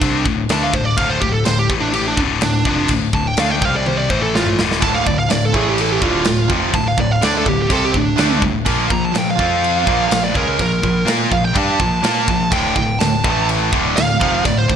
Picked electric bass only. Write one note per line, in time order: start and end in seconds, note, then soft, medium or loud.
0.01 0.24 C2 loud
0.25 0.48 D1 medium
0.50 0.72 D2 loud
0.74 0.96 D1 medium
0.97 1.20 D1 medium
1.22 1.44 D1 medium
1.46 1.69 D1 medium
1.69 2.14 A1 loud
2.18 2.40 D1 medium
2.41 2.64 D1 medium
2.65 2.88 F1 medium
2.89 3.12 D1 medium
3.13 3.36 D1 medium
3.38 3.61 D2 medium
3.61 4.06 C2 loud
4.10 4.55 A1 loud
4.59 4.81 D1 medium
4.82 5.05 D1 medium
5.07 5.29 D1 medium
5.31 5.53 D1 medium
5.54 5.99 A1 loud
6.02 6.25 D1 loud
6.26 6.49 D1 medium
6.50 6.72 F1 medium
6.73 6.96 D1 medium
6.98 7.20 D1 medium
7.24 7.46 D2 medium
7.46 7.69 D1 medium
7.70 7.93 C2 loud
7.95 8.17 D1 medium
8.19 8.41 D2 medium
8.42 8.65 D1 medium
8.66 8.89 A#1 medium
8.90 9.13 A#1 medium
9.15 9.37 A#1 medium
9.38 9.84 F2 loud
9.87 10.10 A#1 loud
10.10 10.33 A#1 medium
10.35 10.58 C#2 medium
10.60 10.82 A#1 medium
10.84 11.05 A#1 medium
11.06 11.29 A#2 loud
11.31 11.54 A#1 medium
11.56 11.78 G2 loud
11.80 12.01 A#1 medium
12.02 12.26 A#2 medium
12.28 12.51 A#1 medium
12.52 12.75 D1 loud
12.76 12.99 D1 medium
13.00 13.23 D1 medium
13.24 13.69 A1 loud
13.72 13.95 D1 medium
13.95 14.19 D1 medium
14.21 14.44 F1 medium
14.45 14.68 D1 medium
14.69 14.76 D1 medium